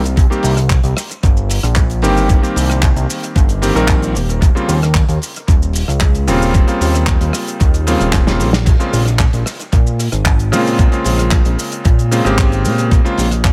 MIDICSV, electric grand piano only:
0, 0, Header, 1, 2, 480
1, 0, Start_track
1, 0, Tempo, 530973
1, 155, Time_signature, 4, 2, 24, 8
1, 12229, End_track
2, 0, Start_track
2, 0, Title_t, "Electric grand piano"
2, 0, Program_c, 0, 2
2, 270, Note_on_c, 0, 51, 77
2, 272, Note_on_c, 0, 55, 70
2, 275, Note_on_c, 0, 58, 72
2, 277, Note_on_c, 0, 60, 69
2, 279, Note_on_c, 0, 67, 87
2, 463, Note_off_c, 0, 51, 0
2, 464, Note_off_c, 0, 55, 0
2, 465, Note_off_c, 0, 58, 0
2, 466, Note_off_c, 0, 60, 0
2, 467, Note_off_c, 0, 67, 0
2, 1829, Note_on_c, 0, 51, 95
2, 1831, Note_on_c, 0, 55, 88
2, 1834, Note_on_c, 0, 58, 86
2, 1835, Note_on_c, 0, 60, 88
2, 1838, Note_on_c, 0, 67, 102
2, 2165, Note_off_c, 0, 51, 0
2, 2165, Note_off_c, 0, 55, 0
2, 2167, Note_off_c, 0, 58, 0
2, 2167, Note_off_c, 0, 60, 0
2, 2169, Note_off_c, 0, 67, 0
2, 2185, Note_on_c, 0, 51, 74
2, 2189, Note_on_c, 0, 55, 68
2, 2192, Note_on_c, 0, 58, 72
2, 2197, Note_on_c, 0, 60, 71
2, 2202, Note_on_c, 0, 67, 84
2, 3241, Note_off_c, 0, 51, 0
2, 3243, Note_off_c, 0, 55, 0
2, 3244, Note_off_c, 0, 58, 0
2, 3247, Note_off_c, 0, 60, 0
2, 3249, Note_off_c, 0, 67, 0
2, 3269, Note_on_c, 0, 51, 83
2, 3271, Note_on_c, 0, 55, 77
2, 3274, Note_on_c, 0, 58, 75
2, 3275, Note_on_c, 0, 60, 79
2, 3278, Note_on_c, 0, 67, 90
2, 3365, Note_off_c, 0, 51, 0
2, 3365, Note_off_c, 0, 55, 0
2, 3367, Note_off_c, 0, 58, 0
2, 3368, Note_off_c, 0, 60, 0
2, 3369, Note_off_c, 0, 67, 0
2, 3391, Note_on_c, 0, 51, 92
2, 3392, Note_on_c, 0, 55, 85
2, 3396, Note_on_c, 0, 58, 88
2, 3399, Note_on_c, 0, 60, 88
2, 3401, Note_on_c, 0, 70, 105
2, 3738, Note_off_c, 0, 51, 0
2, 3739, Note_off_c, 0, 55, 0
2, 3740, Note_off_c, 0, 58, 0
2, 3742, Note_off_c, 0, 60, 0
2, 3743, Note_off_c, 0, 70, 0
2, 4112, Note_on_c, 0, 49, 80
2, 4114, Note_on_c, 0, 55, 76
2, 4118, Note_on_c, 0, 58, 74
2, 4119, Note_on_c, 0, 60, 73
2, 4122, Note_on_c, 0, 65, 90
2, 4304, Note_off_c, 0, 49, 0
2, 4305, Note_off_c, 0, 55, 0
2, 4306, Note_off_c, 0, 58, 0
2, 4307, Note_off_c, 0, 60, 0
2, 4309, Note_off_c, 0, 65, 0
2, 5672, Note_on_c, 0, 49, 97
2, 5673, Note_on_c, 0, 55, 88
2, 5675, Note_on_c, 0, 58, 88
2, 5678, Note_on_c, 0, 60, 91
2, 5681, Note_on_c, 0, 65, 106
2, 6006, Note_off_c, 0, 49, 0
2, 6007, Note_off_c, 0, 55, 0
2, 6008, Note_off_c, 0, 58, 0
2, 6009, Note_off_c, 0, 60, 0
2, 6010, Note_off_c, 0, 65, 0
2, 6028, Note_on_c, 0, 49, 77
2, 6032, Note_on_c, 0, 55, 71
2, 6036, Note_on_c, 0, 58, 70
2, 6041, Note_on_c, 0, 60, 68
2, 6045, Note_on_c, 0, 65, 82
2, 7082, Note_off_c, 0, 49, 0
2, 7085, Note_off_c, 0, 55, 0
2, 7086, Note_off_c, 0, 58, 0
2, 7089, Note_off_c, 0, 60, 0
2, 7091, Note_off_c, 0, 65, 0
2, 7111, Note_on_c, 0, 49, 84
2, 7114, Note_on_c, 0, 55, 76
2, 7117, Note_on_c, 0, 58, 76
2, 7117, Note_on_c, 0, 60, 78
2, 7120, Note_on_c, 0, 65, 93
2, 7446, Note_off_c, 0, 49, 0
2, 7447, Note_off_c, 0, 55, 0
2, 7448, Note_off_c, 0, 60, 0
2, 7449, Note_off_c, 0, 58, 0
2, 7450, Note_off_c, 0, 65, 0
2, 7473, Note_on_c, 0, 49, 83
2, 7474, Note_on_c, 0, 55, 77
2, 7478, Note_on_c, 0, 58, 74
2, 7479, Note_on_c, 0, 60, 74
2, 7481, Note_on_c, 0, 65, 90
2, 7664, Note_off_c, 0, 49, 0
2, 7665, Note_off_c, 0, 55, 0
2, 7666, Note_off_c, 0, 58, 0
2, 7667, Note_off_c, 0, 60, 0
2, 7668, Note_off_c, 0, 65, 0
2, 7950, Note_on_c, 0, 49, 78
2, 7952, Note_on_c, 0, 56, 72
2, 7954, Note_on_c, 0, 58, 73
2, 7957, Note_on_c, 0, 60, 72
2, 7960, Note_on_c, 0, 65, 84
2, 8143, Note_off_c, 0, 49, 0
2, 8144, Note_off_c, 0, 56, 0
2, 8145, Note_off_c, 0, 58, 0
2, 8146, Note_off_c, 0, 60, 0
2, 8147, Note_off_c, 0, 65, 0
2, 9508, Note_on_c, 0, 49, 96
2, 9510, Note_on_c, 0, 56, 88
2, 9513, Note_on_c, 0, 58, 89
2, 9514, Note_on_c, 0, 60, 88
2, 9517, Note_on_c, 0, 65, 105
2, 9844, Note_off_c, 0, 49, 0
2, 9845, Note_off_c, 0, 56, 0
2, 9846, Note_off_c, 0, 58, 0
2, 9847, Note_off_c, 0, 60, 0
2, 9848, Note_off_c, 0, 65, 0
2, 9867, Note_on_c, 0, 49, 77
2, 9871, Note_on_c, 0, 56, 69
2, 9874, Note_on_c, 0, 58, 69
2, 9879, Note_on_c, 0, 60, 69
2, 9884, Note_on_c, 0, 65, 85
2, 10922, Note_off_c, 0, 49, 0
2, 10924, Note_off_c, 0, 56, 0
2, 10925, Note_off_c, 0, 58, 0
2, 10928, Note_off_c, 0, 60, 0
2, 10930, Note_off_c, 0, 65, 0
2, 10950, Note_on_c, 0, 49, 86
2, 10952, Note_on_c, 0, 56, 78
2, 10955, Note_on_c, 0, 58, 77
2, 10957, Note_on_c, 0, 60, 79
2, 10959, Note_on_c, 0, 65, 91
2, 11045, Note_off_c, 0, 49, 0
2, 11046, Note_off_c, 0, 56, 0
2, 11047, Note_off_c, 0, 58, 0
2, 11049, Note_off_c, 0, 60, 0
2, 11049, Note_off_c, 0, 65, 0
2, 11069, Note_on_c, 0, 49, 96
2, 11073, Note_on_c, 0, 56, 85
2, 11078, Note_on_c, 0, 58, 86
2, 11081, Note_on_c, 0, 60, 86
2, 11086, Note_on_c, 0, 67, 100
2, 11764, Note_off_c, 0, 49, 0
2, 11766, Note_off_c, 0, 56, 0
2, 11768, Note_off_c, 0, 58, 0
2, 11770, Note_off_c, 0, 60, 0
2, 11772, Note_off_c, 0, 67, 0
2, 11792, Note_on_c, 0, 49, 83
2, 11794, Note_on_c, 0, 56, 75
2, 11796, Note_on_c, 0, 58, 73
2, 11799, Note_on_c, 0, 60, 74
2, 11800, Note_on_c, 0, 65, 89
2, 11984, Note_off_c, 0, 49, 0
2, 11985, Note_off_c, 0, 56, 0
2, 11986, Note_off_c, 0, 58, 0
2, 11987, Note_off_c, 0, 60, 0
2, 11988, Note_off_c, 0, 65, 0
2, 12229, End_track
0, 0, End_of_file